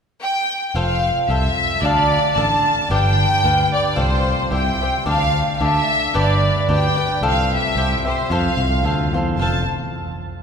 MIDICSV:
0, 0, Header, 1, 4, 480
1, 0, Start_track
1, 0, Key_signature, -1, "major"
1, 0, Tempo, 538600
1, 670, Time_signature, 2, 2, 24, 8
1, 7390, Tempo, 547445
1, 9262, End_track
2, 0, Start_track
2, 0, Title_t, "Violin section"
2, 0, Program_c, 0, 48
2, 187, Note_on_c, 0, 79, 90
2, 581, Note_off_c, 0, 79, 0
2, 607, Note_on_c, 0, 79, 48
2, 660, Note_on_c, 0, 77, 77
2, 668, Note_off_c, 0, 79, 0
2, 1084, Note_off_c, 0, 77, 0
2, 1095, Note_on_c, 0, 77, 43
2, 1147, Note_on_c, 0, 76, 78
2, 1154, Note_off_c, 0, 77, 0
2, 1626, Note_on_c, 0, 74, 90
2, 1631, Note_off_c, 0, 76, 0
2, 2091, Note_on_c, 0, 81, 79
2, 2106, Note_off_c, 0, 74, 0
2, 2577, Note_off_c, 0, 81, 0
2, 2590, Note_on_c, 0, 79, 97
2, 3281, Note_off_c, 0, 79, 0
2, 3325, Note_on_c, 0, 74, 77
2, 3548, Note_off_c, 0, 74, 0
2, 3557, Note_on_c, 0, 72, 84
2, 4028, Note_on_c, 0, 79, 72
2, 4034, Note_off_c, 0, 72, 0
2, 4481, Note_off_c, 0, 79, 0
2, 4529, Note_on_c, 0, 77, 89
2, 4918, Note_off_c, 0, 77, 0
2, 4950, Note_on_c, 0, 77, 41
2, 5003, Note_off_c, 0, 77, 0
2, 5018, Note_on_c, 0, 76, 82
2, 5486, Note_off_c, 0, 76, 0
2, 5497, Note_on_c, 0, 74, 76
2, 5930, Note_off_c, 0, 74, 0
2, 5991, Note_on_c, 0, 79, 81
2, 6417, Note_off_c, 0, 79, 0
2, 6484, Note_on_c, 0, 77, 82
2, 6693, Note_off_c, 0, 77, 0
2, 6717, Note_on_c, 0, 76, 76
2, 7146, Note_off_c, 0, 76, 0
2, 7190, Note_on_c, 0, 72, 64
2, 7404, Note_off_c, 0, 72, 0
2, 7413, Note_on_c, 0, 77, 78
2, 8134, Note_off_c, 0, 77, 0
2, 8347, Note_on_c, 0, 81, 62
2, 8585, Note_off_c, 0, 81, 0
2, 9262, End_track
3, 0, Start_track
3, 0, Title_t, "Cavaquinho"
3, 0, Program_c, 1, 24
3, 670, Note_on_c, 1, 65, 61
3, 674, Note_on_c, 1, 69, 61
3, 675, Note_on_c, 1, 72, 54
3, 677, Note_on_c, 1, 77, 63
3, 1148, Note_off_c, 1, 65, 0
3, 1149, Note_off_c, 1, 69, 0
3, 1151, Note_on_c, 1, 65, 43
3, 1155, Note_off_c, 1, 72, 0
3, 1160, Note_on_c, 1, 69, 52
3, 1166, Note_on_c, 1, 72, 46
3, 1631, Note_off_c, 1, 69, 0
3, 1640, Note_off_c, 1, 65, 0
3, 1641, Note_off_c, 1, 72, 0
3, 1641, Note_on_c, 1, 69, 59
3, 1643, Note_on_c, 1, 62, 60
3, 1646, Note_on_c, 1, 74, 56
3, 1649, Note_off_c, 1, 77, 0
3, 1653, Note_on_c, 1, 77, 63
3, 2101, Note_off_c, 1, 62, 0
3, 2104, Note_off_c, 1, 69, 0
3, 2112, Note_off_c, 1, 74, 0
3, 2112, Note_on_c, 1, 62, 45
3, 2115, Note_on_c, 1, 69, 50
3, 2123, Note_on_c, 1, 74, 50
3, 2131, Note_off_c, 1, 77, 0
3, 2135, Note_on_c, 1, 77, 51
3, 2580, Note_off_c, 1, 62, 0
3, 2584, Note_off_c, 1, 77, 0
3, 2587, Note_off_c, 1, 74, 0
3, 2588, Note_off_c, 1, 69, 0
3, 2590, Note_on_c, 1, 71, 55
3, 2591, Note_on_c, 1, 62, 63
3, 2592, Note_on_c, 1, 67, 65
3, 2595, Note_on_c, 1, 77, 56
3, 3049, Note_off_c, 1, 67, 0
3, 3052, Note_off_c, 1, 62, 0
3, 3057, Note_off_c, 1, 71, 0
3, 3060, Note_on_c, 1, 67, 44
3, 3063, Note_on_c, 1, 62, 44
3, 3065, Note_off_c, 1, 77, 0
3, 3068, Note_on_c, 1, 71, 52
3, 3075, Note_on_c, 1, 77, 53
3, 3521, Note_off_c, 1, 67, 0
3, 3521, Note_off_c, 1, 77, 0
3, 3525, Note_off_c, 1, 62, 0
3, 3525, Note_on_c, 1, 69, 59
3, 3529, Note_on_c, 1, 65, 57
3, 3531, Note_off_c, 1, 71, 0
3, 3532, Note_on_c, 1, 77, 63
3, 3534, Note_on_c, 1, 72, 62
3, 4013, Note_off_c, 1, 65, 0
3, 4016, Note_on_c, 1, 64, 41
3, 4018, Note_off_c, 1, 69, 0
3, 4018, Note_off_c, 1, 72, 0
3, 4021, Note_off_c, 1, 77, 0
3, 4023, Note_on_c, 1, 67, 51
3, 4028, Note_on_c, 1, 72, 37
3, 4029, Note_on_c, 1, 76, 44
3, 4275, Note_off_c, 1, 76, 0
3, 4278, Note_off_c, 1, 64, 0
3, 4281, Note_off_c, 1, 67, 0
3, 4284, Note_off_c, 1, 72, 0
3, 4286, Note_on_c, 1, 76, 38
3, 4299, Note_on_c, 1, 72, 40
3, 4306, Note_on_c, 1, 67, 28
3, 4504, Note_off_c, 1, 72, 0
3, 4506, Note_on_c, 1, 62, 55
3, 4508, Note_on_c, 1, 74, 60
3, 4510, Note_off_c, 1, 67, 0
3, 4512, Note_off_c, 1, 76, 0
3, 4514, Note_on_c, 1, 69, 56
3, 4516, Note_on_c, 1, 77, 62
3, 4985, Note_off_c, 1, 62, 0
3, 4990, Note_off_c, 1, 74, 0
3, 4992, Note_off_c, 1, 69, 0
3, 4996, Note_on_c, 1, 62, 44
3, 4997, Note_off_c, 1, 77, 0
3, 5001, Note_on_c, 1, 74, 49
3, 5003, Note_on_c, 1, 69, 38
3, 5459, Note_off_c, 1, 62, 0
3, 5470, Note_on_c, 1, 62, 66
3, 5472, Note_off_c, 1, 69, 0
3, 5474, Note_off_c, 1, 74, 0
3, 5475, Note_on_c, 1, 67, 58
3, 5477, Note_on_c, 1, 71, 61
3, 5484, Note_on_c, 1, 74, 66
3, 5946, Note_off_c, 1, 62, 0
3, 5947, Note_off_c, 1, 67, 0
3, 5953, Note_off_c, 1, 71, 0
3, 5957, Note_off_c, 1, 74, 0
3, 5957, Note_on_c, 1, 62, 43
3, 5958, Note_on_c, 1, 67, 54
3, 5971, Note_on_c, 1, 71, 45
3, 5972, Note_on_c, 1, 74, 51
3, 6189, Note_off_c, 1, 74, 0
3, 6200, Note_on_c, 1, 74, 47
3, 6204, Note_off_c, 1, 71, 0
3, 6205, Note_off_c, 1, 62, 0
3, 6206, Note_off_c, 1, 67, 0
3, 6215, Note_on_c, 1, 71, 31
3, 6216, Note_on_c, 1, 67, 38
3, 6428, Note_off_c, 1, 74, 0
3, 6436, Note_off_c, 1, 71, 0
3, 6437, Note_off_c, 1, 67, 0
3, 6440, Note_on_c, 1, 65, 52
3, 6441, Note_on_c, 1, 69, 72
3, 6442, Note_on_c, 1, 72, 56
3, 6446, Note_on_c, 1, 77, 72
3, 6913, Note_off_c, 1, 65, 0
3, 6914, Note_off_c, 1, 69, 0
3, 6916, Note_off_c, 1, 77, 0
3, 6925, Note_on_c, 1, 64, 51
3, 6926, Note_off_c, 1, 72, 0
3, 6930, Note_on_c, 1, 72, 51
3, 6932, Note_on_c, 1, 67, 52
3, 6942, Note_on_c, 1, 76, 51
3, 7162, Note_off_c, 1, 76, 0
3, 7169, Note_off_c, 1, 64, 0
3, 7171, Note_off_c, 1, 72, 0
3, 7172, Note_off_c, 1, 67, 0
3, 7172, Note_on_c, 1, 76, 50
3, 7190, Note_on_c, 1, 67, 37
3, 7190, Note_on_c, 1, 72, 40
3, 7396, Note_off_c, 1, 76, 0
3, 7404, Note_off_c, 1, 67, 0
3, 7404, Note_on_c, 1, 65, 56
3, 7405, Note_off_c, 1, 72, 0
3, 7408, Note_on_c, 1, 69, 72
3, 7413, Note_on_c, 1, 77, 68
3, 7415, Note_on_c, 1, 72, 59
3, 7864, Note_off_c, 1, 65, 0
3, 7867, Note_on_c, 1, 65, 47
3, 7874, Note_off_c, 1, 69, 0
3, 7878, Note_on_c, 1, 69, 39
3, 7882, Note_off_c, 1, 72, 0
3, 7882, Note_off_c, 1, 77, 0
3, 7885, Note_on_c, 1, 72, 43
3, 7886, Note_on_c, 1, 77, 47
3, 8121, Note_off_c, 1, 65, 0
3, 8121, Note_off_c, 1, 77, 0
3, 8127, Note_off_c, 1, 69, 0
3, 8127, Note_off_c, 1, 72, 0
3, 8132, Note_on_c, 1, 77, 46
3, 8137, Note_on_c, 1, 72, 40
3, 8153, Note_on_c, 1, 69, 36
3, 8356, Note_on_c, 1, 65, 54
3, 8357, Note_off_c, 1, 77, 0
3, 8360, Note_off_c, 1, 72, 0
3, 8362, Note_off_c, 1, 69, 0
3, 8372, Note_on_c, 1, 69, 52
3, 8378, Note_on_c, 1, 72, 53
3, 8379, Note_on_c, 1, 77, 65
3, 8557, Note_off_c, 1, 65, 0
3, 8565, Note_off_c, 1, 69, 0
3, 8568, Note_off_c, 1, 72, 0
3, 8568, Note_off_c, 1, 77, 0
3, 9262, End_track
4, 0, Start_track
4, 0, Title_t, "Picked electric bass"
4, 0, Program_c, 2, 34
4, 664, Note_on_c, 2, 29, 70
4, 981, Note_off_c, 2, 29, 0
4, 1145, Note_on_c, 2, 36, 66
4, 1313, Note_off_c, 2, 36, 0
4, 1621, Note_on_c, 2, 38, 79
4, 1935, Note_off_c, 2, 38, 0
4, 2102, Note_on_c, 2, 33, 67
4, 2268, Note_off_c, 2, 33, 0
4, 2583, Note_on_c, 2, 31, 78
4, 2894, Note_off_c, 2, 31, 0
4, 3068, Note_on_c, 2, 38, 67
4, 3230, Note_off_c, 2, 38, 0
4, 3540, Note_on_c, 2, 36, 69
4, 3855, Note_off_c, 2, 36, 0
4, 4023, Note_on_c, 2, 36, 57
4, 4191, Note_off_c, 2, 36, 0
4, 4509, Note_on_c, 2, 38, 63
4, 4825, Note_off_c, 2, 38, 0
4, 4998, Note_on_c, 2, 38, 69
4, 5161, Note_off_c, 2, 38, 0
4, 5482, Note_on_c, 2, 31, 76
4, 5790, Note_off_c, 2, 31, 0
4, 5960, Note_on_c, 2, 38, 68
4, 6120, Note_off_c, 2, 38, 0
4, 6427, Note_on_c, 2, 36, 65
4, 6739, Note_off_c, 2, 36, 0
4, 6911, Note_on_c, 2, 36, 68
4, 7074, Note_off_c, 2, 36, 0
4, 7398, Note_on_c, 2, 41, 70
4, 7559, Note_off_c, 2, 41, 0
4, 7635, Note_on_c, 2, 36, 74
4, 7843, Note_off_c, 2, 36, 0
4, 7865, Note_on_c, 2, 38, 63
4, 8095, Note_off_c, 2, 38, 0
4, 8118, Note_on_c, 2, 40, 60
4, 8327, Note_off_c, 2, 40, 0
4, 8342, Note_on_c, 2, 29, 75
4, 8582, Note_off_c, 2, 29, 0
4, 9262, End_track
0, 0, End_of_file